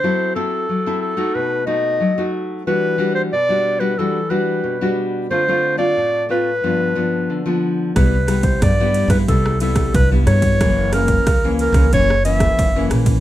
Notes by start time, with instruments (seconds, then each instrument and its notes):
Already playing: clarinet C5
0.04 nylon-string guitar F#3 C4 E4 A4
0.35 nylon-string guitar C4 E4 A4, clarinet A4
0.69 nylon-string guitar F#3
0.86 nylon-string guitar C4 E4 A4
1.01 clarinet A4
1.17 nylon-string guitar A3 D#4 F#4
1.35 nylon-string guitar B2, clarinet B4
1.66 nylon-string guitar A3 D#4 F#4, clarinet D#5
2.00 nylon-string guitar F#3
2.18 nylon-string guitar A3 D#4 F#4
2.67 nylon-string guitar E3 G3 D4 F#4, clarinet B4
2.98 nylon-string guitar G3 D4 F#4
3.15 clarinet C5
3.33 nylon-string guitar B2, clarinet D5
3.49 nylon-string guitar G3 D4 F#4
3.80 nylon-string guitar G3 D4 F#4, clarinet B4
3.98 nylon-string guitar E3 G3 D4 F#4, clarinet A4
4.30 nylon-string guitar G3 D4 F#4, clarinet B4
4.64 nylon-string guitar B2
4.81 nylon-string guitar G3 D4 F#4
5.30 nylon-string guitar D3 A3 C4 F4, clarinet C5
5.48 nylon-string guitar A3 C4 F4
5.77 nylon-string guitar A3 C4 F4, clarinet D5
5.97 nylon-string guitar A2
6.29 nylon-string guitar A3 C4 F4, clarinet B4
6.64 nylon-string guitar G2 F3 B3 D4
6.95 nylon-string guitar F3 B3 D4
7.30 nylon-string guitar D3
7.46 nylon-string guitar F3 B3 D4
7.96 upright bass C2, nylon-string guitar C3 G3 B3 E4, clarinet B4, kick, cross-stick, ride
8.27 nylon-string guitar G3 B3 E4, cross-stick, ride
8.43 clarinet C5, kick, ride
8.62 upright bass G2, nylon-string guitar G2, clarinet D5, kick, cross-stick, ride
8.80 nylon-string guitar G3 B3 E4
8.94 ride
9.08 upright bass G2, nylon-string guitar G3 B3 E4, clarinet B4, kick, cross-stick, ride
9.28 upright bass C2, nylon-string guitar C3 G3 B3 E4, clarinet A4, kick, ride
9.46 cross-stick
9.60 nylon-string guitar G3 B3 E4, clarinet A4, ride
9.76 kick, cross-stick, ride
9.94 upright bass C2, nylon-string guitar G2, clarinet B4, kick, ride
10.11 nylon-string guitar G3 B3 E4
10.26 upright bass G2, clarinet C#5, cross-stick, ride
10.42 kick, ride
10.60 upright bass F#1, nylon-string guitar F#2 E3 A#3 C#4, kick, cross-stick, ride
10.93 nylon-string guitar E3 A#3 C#4, clarinet A#4, cross-stick, ride
11.08 kick, ride
11.27 upright bass C#2, nylon-string guitar C#3, kick, cross-stick, ride
11.44 nylon-string guitar E3 A#3 C#4
11.59 clarinet A#4, ride
11.72 upright bass C#2, nylon-string guitar E3 A#3 C#4, kick, cross-stick, ride
11.93 upright bass F#1, nylon-string guitar F#2 E3 A#3 C#4, clarinet C#5, kick, ride
12.10 cross-stick
12.25 nylon-string guitar E3 A#3 C#4, clarinet E5, ride
12.40 kick, cross-stick, ride
12.59 upright bass F#1, nylon-string guitar C#3, kick, ride
12.76 nylon-string guitar E3 A#3 C#4
12.90 upright bass A#1, cross-stick, ride
13.06 kick, ride